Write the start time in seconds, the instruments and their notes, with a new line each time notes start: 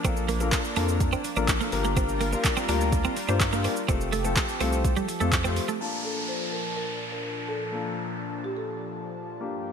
Already playing: analog synth pad F3 A#3 D4
0.04 sub bass A#1, grand piano A#3 D4 F4 A4 A#4, clean electric guitar C4, kick, closed hi-hat, shaker
0.17 shaker
0.29 clean electric guitar A#3, open hi-hat, shaker
0.40 grand piano A#3 D4 F4 A4 A#4, muted clean electric guitar stroke, shaker
0.52 kick, clap, closed hi-hat, shaker
0.64 shaker
0.76 sub bass F2, grand piano A#3 D4 F4 A4 A#4, clean electric guitar D4, open hi-hat, shaker
0.89 shaker
1.00 kick, closed hi-hat, shaker
1.12 clean electric guitar C4, shaker
1.24 muted clean electric guitar stroke, open hi-hat, shaker
1.36 sub bass A1, grand piano A#3 D4 F4 A4 A#4, clean electric guitar D4, shaker
1.48 kick, clap, closed hi-hat, shaker
1.60 grand piano A#3 D4 F4 A4 A#4, clean electric guitar A#3, shaker
1.72 sub bass G1, analog synth pad G3 F4 A#4, grand piano A#3 D4 F4 G4 A#4, muted clean electric guitar stroke, open hi-hat, shaker
1.84 clean electric guitar A#3, shaker
1.97 clean electric guitar C4, kick, closed hi-hat, shaker
2.09 shaker
2.21 clean electric guitar A#3, open hi-hat, shaker
2.32 grand piano A#3 D4 F4 G4 A#4, muted clean electric guitar stroke, shaker
2.45 muted clean electric guitar stroke, kick, clap, closed hi-hat, shaker
2.57 clean electric guitar C4, shaker
2.68 sub bass D2, grand piano A#3 D4 F4 G4 A#4, clean electric guitar D4, open hi-hat, shaker
2.81 shaker
2.92 kick, closed hi-hat, shaker
3.04 clean electric guitar C4, shaker
3.17 muted clean electric guitar stroke, open hi-hat, shaker
3.28 sub bass G2, grand piano A#3 D4 F4 G4 C5, clean electric guitar D4, shaker
3.40 muted clean electric guitar stroke, kick, clap, closed hi-hat, shaker
3.52 grand piano A#3 D4 F4 G4 A#4, clean electric guitar A#3, shaker
3.64 clean electric guitar C4, open hi-hat, shaker
3.76 shaker
3.88 sub bass F1, analog synth pad F3 C4 G4 A4, grand piano A3 C4 F4 G4 A4, clean electric guitar C4, kick, closed hi-hat, shaker
4.01 shaker
4.12 clean electric guitar A3, open hi-hat, shaker
4.24 grand piano A3 C4 F4 G4 A4, muted clean electric guitar stroke, shaker
4.37 kick, clap, closed hi-hat, shaker
4.49 shaker
4.60 sub bass C2, grand piano A3 C4 F4 G4 A4, clean electric guitar C4, open hi-hat, shaker
4.73 shaker
4.85 kick, closed hi-hat, shaker
4.96 clean electric guitar G3, shaker
5.09 muted clean electric guitar stroke, open hi-hat, shaker
5.20 sub bass F2, grand piano A3 C4 F4 G4 A4, clean electric guitar A3, shaker
5.32 kick, clap, closed hi-hat, shaker
5.44 grand piano A3 C4 F4 G4 C5, clean electric guitar C4, shaker
5.56 muted clean electric guitar stroke, open hi-hat, shaker
5.68 clean electric guitar A3, shaker
5.80 analog synth pad A#2 F3 D4 A5, grand piano A#3 D4 F4 A5, downlifter
6.05 marimba A4
6.28 marimba C5
6.52 marimba A#4
6.77 marimba A#4
7.12 marimba A#4
7.49 marimba A4
7.72 grand piano A#3 D4 F4 A4
8.44 marimba G4
8.57 marimba A4
9.40 analog synth pad G2 A#3 G4, grand piano A#3 D4 F4 G4